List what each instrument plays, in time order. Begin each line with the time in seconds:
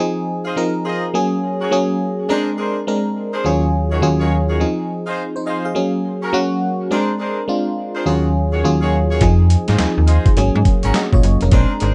0.00 fm electric piano F3 C4 D#4 G#4
0.45 horn section F4 G#4 C5 D#5
0.56 fm electric piano F3 C4 D#4 A#4
0.85 horn section F4 G#4 C5 D#5
1.14 fm electric piano F#3 A#3 C#4 G#4
1.60 horn section F#4 G#4 A#4 C#5
1.71 fm electric piano F#3 A#3 C#4 G#4
2.29 fm electric piano G#3 C4 D4 A#4, horn section D4 G#4 A#4 C5
2.57 horn section D4 G#4 A#4 C5
2.87 fm electric piano G#3 C4 D4 A#4
3.33 horn section D4 G#4 A#4 C5
3.44 fm electric piano D#2 F#3 C#4 F4 G#4, horn section D#3 F4 F#4 G#4 C#5
3.91 horn section D#3 F4 F#4 G#4 C#5
4.02 fm electric piano D#2 F#3 C#4 F4 G#4
4.20 horn section D#3 F4 F#4 G#4 C#5
4.48 horn section D#3 F4 F#4 G#4 C#5
4.60 fm electric piano F3 C4 D#4 G#4
5.06 horn section D#4 F4 G#4 C5
5.36 fm electric piano D#4 C5
5.46 horn section D#4 F4 G#4 C5, fm electric piano D#5
5.65 fm electric piano G#4 F5
5.75 fm electric piano F#3 A#3 C#4 G#4
6.22 horn section C#4 F#4 G#4 A#4
6.33 fm electric piano F#3 A#3 C#4 F#4
6.91 fm electric piano G#3 C4 D4 A#4, horn section D4 G#4 A#4 C5
7.19 horn section D4 G#4 A#4 C5
7.48 fm electric piano G#3 C4 D4 F4
7.95 horn section D4 G#4 A#4 C5
8.05 fm electric piano D#2 F#3 C#4 F4 G#4, horn section D#3 F4 F#4 G#4 C#5
8.52 horn section D#3 F4 F#4 G#4 C#5
8.64 fm electric piano D#2 F#3 C#4 F4 G#4
8.81 horn section D#3 F4 F#4 G#4 C#5
9.10 horn section D#3 F4 F#4 G#4 C#5
9.21 fm bass F2, fm electric piano F3 C4 D#4 G#4, kick, closed hi-hat
9.50 closed hi-hat
9.68 fm bass G#2, horn section D#4 F4 G#4 C5, snare, closed hi-hat
9.78 fm bass D#2, fm electric piano F3 C4 D#4 G#4, snare, clap, closed hi-hat
9.98 fm bass D#2
10.07 horn section D#4 F4 G#4 C5, closed hi-hat
10.26 kick, closed hi-hat
10.37 fm bass G#1, fm electric piano F#3 A#3 C#4 G#4, closed hi-hat
10.55 fm bass G#2
10.65 kick, closed hi-hat
10.83 fm bass G#1, horn section C#4 F#4 G#4 A#4, closed hi-hat
10.94 fm electric piano F#4 D#5, snare, clap, closed hi-hat
11.13 fm bass A#1, fm electric piano F4 C#5, kick
11.23 fm bass F#1, closed hi-hat
11.41 fm bass F1, fm electric piano C#4 A#4, closed hi-hat
11.51 fm bass A#1, fm electric piano G#3 C4 D4 A#4, horn section D4 G#4 A#4 C5, kick, closed hi-hat
11.80 fm bass G#1, horn section D4 G#4 A#4 C5, closed hi-hat